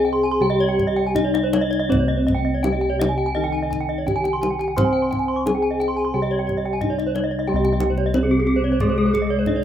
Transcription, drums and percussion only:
0.79 kendang low soft
1.16 kendang low medium
1.35 kendang slap soft
1.53 kendang high soft
1.73 kendang slap soft
1.92 kendang low medium
2.28 kendang low soft
2.64 kendang slap soft
2.64 kendang high soft
3.01 kendang slap soft
3.01 kendang high soft
3.73 kendang low soft
4.08 kendang low soft
4.25 kendang slap soft
4.43 kendang high soft
4.61 kendang slap soft
4.78 kendang high soft
4.78 kendang low medium
5.13 kendang slap soft
5.13 kendang low soft
5.47 kendang slap soft
5.47 kendang high soft
5.81 kendang slap soft
6.49 kendang slap soft
6.49 kendang low soft
6.81 kendang low soft
6.99 kendang slap soft
7.16 kendang high soft
7.65 kendang slap soft
7.80 kendang high soft
7.98 kendang slap soft
8.14 kendang high soft
8.80 kendang low soft
9.15 kendang low soft
9.46 kendang low soft

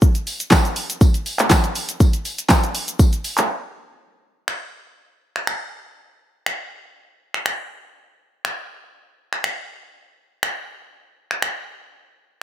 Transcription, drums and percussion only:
0.02 kick loud
0.02 shaker medium
0.15 closed hi-hat medium
0.15 shaker medium
0.27 open hi-hat medium
0.27 tambourine medium
0.27 shaker soft
0.40 closed hi-hat medium
0.40 shaker medium
0.51 kick loud
0.51 snare medium
0.51 clap loud
0.51 tambourine medium
0.51 shaker medium
0.65 closed hi-hat medium
0.65 shaker medium
0.76 open hi-hat medium
0.76 shaker medium
0.90 closed hi-hat medium
0.90 shaker medium
1.01 kick loud
1.01 tambourine medium
1.01 shaker medium
1.14 closed hi-hat medium
1.14 shaker medium
1.26 open hi-hat medium
1.26 tambourine soft
1.26 shaker medium
1.39 clap medium
1.39 closed hi-hat medium
1.39 shaker medium
1.50 kick loud
1.50 snare medium
1.50 clap loud
1.50 tambourine medium
1.50 shaker medium
1.64 closed hi-hat medium
1.64 shaker medium
1.75 open hi-hat medium
1.75 tambourine soft
1.75 shaker medium
1.89 closed hi-hat medium
1.89 shaker medium
2.00 kick loud
2.00 tambourine soft
2.00 shaker medium
2.13 closed hi-hat medium
2.13 shaker medium
2.25 open hi-hat medium
2.25 tambourine medium
2.25 shaker soft
2.38 closed hi-hat medium
2.38 shaker medium
2.49 kick loud
2.49 snare medium
2.49 clap loud
2.49 tambourine medium
2.49 shaker medium
2.63 closed hi-hat medium
2.63 shaker medium
2.75 open hi-hat medium
2.75 tambourine soft
2.75 shaker medium
2.88 closed hi-hat medium
2.88 shaker medium
2.99 kick loud
2.99 tambourine medium
2.99 shaker medium
3.13 closed hi-hat medium
3.13 shaker medium
3.24 open hi-hat medium
3.24 tambourine soft
3.24 shaker medium
3.38 clap medium
3.38 closed hi-hat medium
3.38 shaker medium
4.48 finger snap loud
5.36 finger snap medium
5.47 finger snap loud
6.46 finger snap loud
7.34 finger snap medium
7.46 finger snap loud
8.45 finger snap loud
9.33 finger snap medium
9.44 finger snap loud
10.43 finger snap loud
11.31 finger snap medium
11.42 finger snap loud

